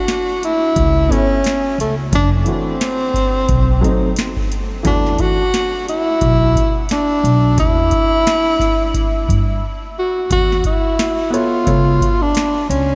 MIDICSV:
0, 0, Header, 1, 5, 480
1, 0, Start_track
1, 0, Tempo, 681818
1, 1493, Time_signature, 4, 2, 24, 8
1, 9117, End_track
2, 0, Start_track
2, 0, Title_t, "Tenor saxophone"
2, 0, Program_c, 0, 66
2, 0, Note_on_c, 0, 66, 91
2, 299, Note_off_c, 0, 66, 0
2, 312, Note_on_c, 0, 64, 97
2, 785, Note_on_c, 0, 61, 98
2, 795, Note_off_c, 0, 64, 0
2, 1259, Note_off_c, 0, 61, 0
2, 1270, Note_on_c, 0, 57, 74
2, 1374, Note_off_c, 0, 57, 0
2, 1513, Note_on_c, 0, 62, 92
2, 1617, Note_off_c, 0, 62, 0
2, 1752, Note_on_c, 0, 60, 86
2, 3154, Note_off_c, 0, 60, 0
2, 3424, Note_on_c, 0, 62, 91
2, 3663, Note_on_c, 0, 66, 100
2, 3674, Note_off_c, 0, 62, 0
2, 4138, Note_off_c, 0, 66, 0
2, 4146, Note_on_c, 0, 64, 99
2, 4831, Note_off_c, 0, 64, 0
2, 4869, Note_on_c, 0, 62, 93
2, 5313, Note_off_c, 0, 62, 0
2, 5345, Note_on_c, 0, 64, 103
2, 6751, Note_off_c, 0, 64, 0
2, 7028, Note_on_c, 0, 66, 78
2, 7245, Note_off_c, 0, 66, 0
2, 7266, Note_on_c, 0, 66, 101
2, 7483, Note_off_c, 0, 66, 0
2, 7508, Note_on_c, 0, 64, 90
2, 7988, Note_on_c, 0, 65, 85
2, 7999, Note_off_c, 0, 64, 0
2, 8601, Note_on_c, 0, 62, 92
2, 8611, Note_off_c, 0, 65, 0
2, 8934, Note_off_c, 0, 62, 0
2, 8939, Note_on_c, 0, 61, 82
2, 9117, Note_off_c, 0, 61, 0
2, 9117, End_track
3, 0, Start_track
3, 0, Title_t, "Grand piano"
3, 0, Program_c, 1, 0
3, 764, Note_on_c, 1, 59, 63
3, 770, Note_on_c, 1, 64, 65
3, 777, Note_on_c, 1, 69, 61
3, 785, Note_on_c, 1, 73, 67
3, 947, Note_off_c, 1, 59, 0
3, 950, Note_off_c, 1, 64, 0
3, 953, Note_off_c, 1, 69, 0
3, 957, Note_off_c, 1, 73, 0
3, 1721, Note_on_c, 1, 52, 61
3, 1729, Note_on_c, 1, 57, 54
3, 1736, Note_on_c, 1, 62, 46
3, 1744, Note_on_c, 1, 66, 57
3, 1905, Note_off_c, 1, 52, 0
3, 1909, Note_off_c, 1, 57, 0
3, 1913, Note_off_c, 1, 62, 0
3, 1917, Note_off_c, 1, 66, 0
3, 2683, Note_on_c, 1, 54, 76
3, 2689, Note_on_c, 1, 57, 66
3, 2696, Note_on_c, 1, 60, 66
3, 2704, Note_on_c, 1, 63, 77
3, 2866, Note_off_c, 1, 54, 0
3, 2869, Note_off_c, 1, 57, 0
3, 2873, Note_off_c, 1, 60, 0
3, 2877, Note_off_c, 1, 63, 0
3, 3402, Note_on_c, 1, 52, 66
3, 3408, Note_on_c, 1, 57, 55
3, 3416, Note_on_c, 1, 62, 61
3, 3425, Note_on_c, 1, 66, 69
3, 3757, Note_off_c, 1, 52, 0
3, 3761, Note_off_c, 1, 57, 0
3, 3764, Note_off_c, 1, 62, 0
3, 3769, Note_off_c, 1, 66, 0
3, 7958, Note_on_c, 1, 59, 71
3, 7966, Note_on_c, 1, 76, 60
3, 7974, Note_on_c, 1, 69, 60
3, 7982, Note_on_c, 1, 73, 75
3, 8185, Note_off_c, 1, 59, 0
3, 8196, Note_on_c, 1, 59, 59
3, 8202, Note_off_c, 1, 69, 0
3, 8206, Note_on_c, 1, 65, 59
3, 8208, Note_off_c, 1, 73, 0
3, 8212, Note_on_c, 1, 69, 57
3, 8219, Note_on_c, 1, 73, 70
3, 8499, Note_off_c, 1, 59, 0
3, 8504, Note_off_c, 1, 65, 0
3, 8508, Note_off_c, 1, 69, 0
3, 8511, Note_off_c, 1, 73, 0
3, 8648, Note_off_c, 1, 76, 0
3, 9117, End_track
4, 0, Start_track
4, 0, Title_t, "Upright bass"
4, 0, Program_c, 2, 32
4, 536, Note_on_c, 2, 37, 95
4, 755, Note_off_c, 2, 37, 0
4, 1255, Note_on_c, 2, 37, 68
4, 1474, Note_off_c, 2, 37, 0
4, 1497, Note_on_c, 2, 30, 103
4, 1715, Note_off_c, 2, 30, 0
4, 2456, Note_on_c, 2, 35, 92
4, 2675, Note_off_c, 2, 35, 0
4, 3415, Note_on_c, 2, 40, 108
4, 3634, Note_off_c, 2, 40, 0
4, 4376, Note_on_c, 2, 35, 79
4, 4595, Note_off_c, 2, 35, 0
4, 5094, Note_on_c, 2, 35, 83
4, 5314, Note_off_c, 2, 35, 0
4, 5335, Note_on_c, 2, 40, 102
4, 5554, Note_off_c, 2, 40, 0
4, 6538, Note_on_c, 2, 43, 85
4, 6756, Note_off_c, 2, 43, 0
4, 7255, Note_on_c, 2, 40, 97
4, 7475, Note_off_c, 2, 40, 0
4, 8215, Note_on_c, 2, 37, 92
4, 8434, Note_off_c, 2, 37, 0
4, 8935, Note_on_c, 2, 37, 79
4, 9117, Note_off_c, 2, 37, 0
4, 9117, End_track
5, 0, Start_track
5, 0, Title_t, "Drums"
5, 57, Note_on_c, 9, 42, 80
5, 59, Note_on_c, 9, 38, 93
5, 128, Note_off_c, 9, 42, 0
5, 129, Note_off_c, 9, 38, 0
5, 304, Note_on_c, 9, 42, 61
5, 374, Note_off_c, 9, 42, 0
5, 535, Note_on_c, 9, 36, 93
5, 536, Note_on_c, 9, 42, 78
5, 606, Note_off_c, 9, 36, 0
5, 607, Note_off_c, 9, 42, 0
5, 778, Note_on_c, 9, 36, 96
5, 789, Note_on_c, 9, 42, 68
5, 848, Note_off_c, 9, 36, 0
5, 859, Note_off_c, 9, 42, 0
5, 1016, Note_on_c, 9, 42, 81
5, 1031, Note_on_c, 9, 38, 91
5, 1086, Note_off_c, 9, 42, 0
5, 1102, Note_off_c, 9, 38, 0
5, 1268, Note_on_c, 9, 42, 71
5, 1338, Note_off_c, 9, 42, 0
5, 1495, Note_on_c, 9, 36, 101
5, 1498, Note_on_c, 9, 42, 96
5, 1566, Note_off_c, 9, 36, 0
5, 1568, Note_off_c, 9, 42, 0
5, 1731, Note_on_c, 9, 42, 53
5, 1802, Note_off_c, 9, 42, 0
5, 1978, Note_on_c, 9, 42, 79
5, 1979, Note_on_c, 9, 38, 99
5, 2048, Note_off_c, 9, 42, 0
5, 2050, Note_off_c, 9, 38, 0
5, 2210, Note_on_c, 9, 36, 79
5, 2223, Note_on_c, 9, 42, 66
5, 2281, Note_off_c, 9, 36, 0
5, 2294, Note_off_c, 9, 42, 0
5, 2454, Note_on_c, 9, 42, 77
5, 2455, Note_on_c, 9, 36, 94
5, 2525, Note_off_c, 9, 36, 0
5, 2525, Note_off_c, 9, 42, 0
5, 2697, Note_on_c, 9, 36, 92
5, 2706, Note_on_c, 9, 42, 72
5, 2767, Note_off_c, 9, 36, 0
5, 2776, Note_off_c, 9, 42, 0
5, 2932, Note_on_c, 9, 42, 78
5, 2947, Note_on_c, 9, 38, 100
5, 3002, Note_off_c, 9, 42, 0
5, 3017, Note_off_c, 9, 38, 0
5, 3074, Note_on_c, 9, 36, 77
5, 3144, Note_off_c, 9, 36, 0
5, 3179, Note_on_c, 9, 42, 67
5, 3250, Note_off_c, 9, 42, 0
5, 3413, Note_on_c, 9, 36, 98
5, 3413, Note_on_c, 9, 42, 94
5, 3483, Note_off_c, 9, 42, 0
5, 3484, Note_off_c, 9, 36, 0
5, 3565, Note_on_c, 9, 38, 31
5, 3636, Note_off_c, 9, 38, 0
5, 3650, Note_on_c, 9, 42, 58
5, 3656, Note_on_c, 9, 36, 77
5, 3721, Note_off_c, 9, 42, 0
5, 3726, Note_off_c, 9, 36, 0
5, 3898, Note_on_c, 9, 42, 72
5, 3900, Note_on_c, 9, 38, 91
5, 3969, Note_off_c, 9, 42, 0
5, 3970, Note_off_c, 9, 38, 0
5, 4143, Note_on_c, 9, 42, 64
5, 4213, Note_off_c, 9, 42, 0
5, 4373, Note_on_c, 9, 42, 69
5, 4374, Note_on_c, 9, 36, 86
5, 4444, Note_off_c, 9, 36, 0
5, 4444, Note_off_c, 9, 42, 0
5, 4616, Note_on_c, 9, 36, 90
5, 4625, Note_on_c, 9, 42, 71
5, 4686, Note_off_c, 9, 36, 0
5, 4695, Note_off_c, 9, 42, 0
5, 4850, Note_on_c, 9, 42, 72
5, 4866, Note_on_c, 9, 38, 86
5, 4921, Note_off_c, 9, 42, 0
5, 4936, Note_off_c, 9, 38, 0
5, 5103, Note_on_c, 9, 42, 64
5, 5173, Note_off_c, 9, 42, 0
5, 5334, Note_on_c, 9, 36, 105
5, 5335, Note_on_c, 9, 42, 84
5, 5404, Note_off_c, 9, 36, 0
5, 5405, Note_off_c, 9, 42, 0
5, 5570, Note_on_c, 9, 42, 61
5, 5576, Note_on_c, 9, 36, 75
5, 5641, Note_off_c, 9, 42, 0
5, 5646, Note_off_c, 9, 36, 0
5, 5821, Note_on_c, 9, 42, 74
5, 5823, Note_on_c, 9, 38, 98
5, 5891, Note_off_c, 9, 42, 0
5, 5893, Note_off_c, 9, 38, 0
5, 6050, Note_on_c, 9, 36, 79
5, 6058, Note_on_c, 9, 38, 28
5, 6065, Note_on_c, 9, 42, 67
5, 6121, Note_off_c, 9, 36, 0
5, 6128, Note_off_c, 9, 38, 0
5, 6136, Note_off_c, 9, 42, 0
5, 6296, Note_on_c, 9, 36, 88
5, 6298, Note_on_c, 9, 42, 78
5, 6366, Note_off_c, 9, 36, 0
5, 6368, Note_off_c, 9, 42, 0
5, 6537, Note_on_c, 9, 36, 84
5, 6547, Note_on_c, 9, 42, 71
5, 6607, Note_off_c, 9, 36, 0
5, 6618, Note_off_c, 9, 42, 0
5, 7254, Note_on_c, 9, 36, 108
5, 7256, Note_on_c, 9, 42, 97
5, 7325, Note_off_c, 9, 36, 0
5, 7326, Note_off_c, 9, 42, 0
5, 7408, Note_on_c, 9, 38, 34
5, 7478, Note_off_c, 9, 38, 0
5, 7490, Note_on_c, 9, 42, 52
5, 7496, Note_on_c, 9, 36, 78
5, 7561, Note_off_c, 9, 42, 0
5, 7566, Note_off_c, 9, 36, 0
5, 7738, Note_on_c, 9, 42, 79
5, 7739, Note_on_c, 9, 38, 109
5, 7808, Note_off_c, 9, 42, 0
5, 7810, Note_off_c, 9, 38, 0
5, 7983, Note_on_c, 9, 42, 60
5, 8053, Note_off_c, 9, 42, 0
5, 8214, Note_on_c, 9, 36, 88
5, 8215, Note_on_c, 9, 42, 78
5, 8285, Note_off_c, 9, 36, 0
5, 8286, Note_off_c, 9, 42, 0
5, 8455, Note_on_c, 9, 36, 88
5, 8464, Note_on_c, 9, 42, 70
5, 8525, Note_off_c, 9, 36, 0
5, 8535, Note_off_c, 9, 42, 0
5, 8692, Note_on_c, 9, 42, 74
5, 8707, Note_on_c, 9, 38, 98
5, 8762, Note_off_c, 9, 42, 0
5, 8778, Note_off_c, 9, 38, 0
5, 8945, Note_on_c, 9, 42, 77
5, 9016, Note_off_c, 9, 42, 0
5, 9117, End_track
0, 0, End_of_file